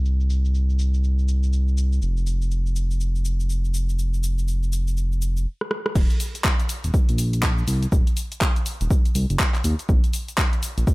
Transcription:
Already playing: analog synth bass C2
0.05 shaker
0.20 shaker
0.30 shaker
0.45 shaker
0.55 shaker
0.69 shaker
0.79 shaker
0.94 shaker
1.04 shaker
1.19 shaker
1.28 shaker
1.43 shaker
1.53 shaker
1.68 shaker
1.77 shaker
1.92 shaker
2.02 analog synth bass F1, shaker
2.17 shaker
2.27 shaker
2.42 shaker
2.51 shaker
2.66 shaker
2.76 shaker
2.91 shaker
3.00 shaker
3.15 shaker
3.25 shaker
3.40 shaker
3.50 shaker
3.65 shaker
3.74 shaker
3.89 shaker
3.99 shaker
4.14 shaker
4.23 shaker
4.38 shaker
4.48 shaker
4.63 shaker
4.73 shaker
4.88 shaker
4.97 shaker
5.12 shaker
5.22 shaker
5.37 shaker
5.61 cross-stick
5.71 cross-stick
5.86 cross-stick
5.95 analog synth bass D#1, kick, crash, shaker
6.10 closed hi-hat, shaker
6.20 open hi-hat, shaker
6.35 closed hi-hat, shaker
6.44 kick, clap, shaker
6.60 closed hi-hat, shaker
6.69 open hi-hat, shaker
6.84 analog synth bass D#1, closed hi-hat, shaker
6.94 kick, shaker
7.09 analog synth bass A#1, closed hi-hat, shaker
7.18 open hi-hat, shaker
7.33 closed hi-hat, shaker
7.43 kick, clap, shaker
7.58 shaker
7.68 analog synth bass C2, open hi-hat, shaker
7.83 closed hi-hat, shaker
7.92 analog synth bass D#1, kick, shaker
8.07 closed hi-hat, shaker
8.17 open hi-hat, shaker
8.32 closed hi-hat, shaker
8.41 kick, clap, shaker
8.56 closed hi-hat, shaker
8.66 open hi-hat, shaker
8.81 analog synth bass D#1, closed hi-hat, shaker
8.91 kick, shaker
9.05 closed hi-hat, shaker
9.15 analog synth bass C2, open hi-hat, shaker
9.30 analog synth bass F#1, closed hi-hat, shaker
9.39 kick, clap, shaker
9.54 clap, closed hi-hat, shaker
9.64 analog synth bass D#2, open hi-hat, shaker
9.79 closed hi-hat, shaker
9.89 analog synth bass A#1, kick, shaker
10.04 closed hi-hat, shaker
10.13 open hi-hat, shaker
10.28 closed hi-hat, shaker
10.38 kick, clap, shaker
10.53 closed hi-hat, shaker
10.63 open hi-hat, shaker
10.78 analog synth bass A#1, closed hi-hat, shaker
10.87 kick, shaker

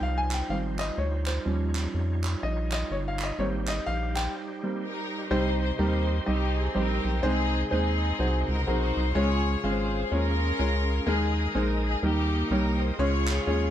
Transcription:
Already playing: grand piano F3 G3 C4 D#4, tonewheel organ G3 D#4 F4 C5
0.01 analog synth bass C2, grand piano F5
0.18 grand piano G#5
0.31 grand piano G5, clap
0.49 analog synth bass G#1, grand piano D#3 F3 G3 C4 F5
0.79 grand piano D#5, clap
0.98 analog synth bass D2, grand piano C#5
1.26 grand piano C5, clap
1.45 analog synth bass D#2, grand piano F3 G3 C#4, tonewheel organ C#5
1.75 clap
1.94 analog synth bass F2
2.24 clap
2.43 analog synth bass A#1, grand piano D#5
2.72 grand piano D#5, clap
2.91 analog synth bass G1, grand piano C#5
3.08 grand piano F5
3.19 clap
3.24 grand piano D#5
3.39 analog synth bass G#1, grand piano G3 A#3 C4 C#5, tonewheel organ G3 G4 C5
3.67 grand piano D#5, clap
3.86 analog synth bass A#1, grand piano F5
4.16 grand piano G5, clap
4.63 grand piano G3 A#3 C4
4.84 string section D#4 G4 A#4
5.31 analog synth bass C2, grand piano C3 G3 C4 D#4 G4 C5, string section D#4 G4 C5, tonewheel organ G4 C5 D#5 C6
5.61 string section C5
5.79 analog synth bass D#2, grand piano G3 C4 D#4 G4 A#4, string section D#4 G4 C5
6.26 analog synth bass C2, grand piano G3 C4 D#4 G4 D#5, string section C4 D#4 G4
6.57 string section G#4
6.75 analog synth bass A#1, grand piano G3 C4 D#4 G4 C5, string section D#4 G4 A#4
7.05 analog synth bass B1
7.23 analog synth bass C2, grand piano C3 G#3 C4 D#4 G#4 C5, string section C4 D#4 G#4, tonewheel organ G#4
7.71 analog synth bass D#2, grand piano G#3 C4 D#4 G#4 C5, string section C4 D#4 G#4
8.19 analog synth bass C2, grand piano C3 C4 D#4 F#4 G#4 C5, tonewheel organ F#5
8.48 analog synth bass C#2, string section A#4
8.67 analog synth bass B1, grand piano C4 D#4 F#4 G#4 A#4, string section D#4 F#4 C5
8.97 analog synth bass C2
9.15 analog synth bass C#2, grand piano C#3 G#3 C#4 F4 G#4 C#5, tonewheel organ C#4 G#4 F5, string section F4 G#4 C#5
9.64 analog synth bass G#1, grand piano G#3 C#4 F4 G#4 F5, string section F4 G#4 C5
10.11 analog synth bass D#2, grand piano G#3 C#4 F4 G#4 C#5, string section C#4 F4 A#4
10.59 analog synth bass C#2, grand piano G#3 C#4 F4 G#4 C#5
11.06 analog synth bass D#2, grand piano D#3 G#3 A#3 D#4 G#4 A#4, string section D#4 G#4, tonewheel organ A#4 D#5 G#5 D#6
11.55 analog synth bass A#1, grand piano G#3 A#3 D#4 G#4 C5, string section A#4
11.86 string section G#4
12.03 analog synth bass D#2, grand piano D#3 G3 A#3 D#4 G4 A#4, string section A#3 D#4 G4, tonewheel organ D#5 G5
12.51 analog synth bass C2, grand piano G3 A#3 D#4 G4 C#5, string section A#4
12.81 string section C5
12.99 analog synth bass C#2, grand piano C#3 G#3 C#4 F4 G#4 C#5, tonewheel organ C#4 G#4 F5, string section F4 G#4 C#5
13.27 clap
13.47 analog synth bass D#2, grand piano G#3 C#4 F4 G#4 C#5, string section C#5

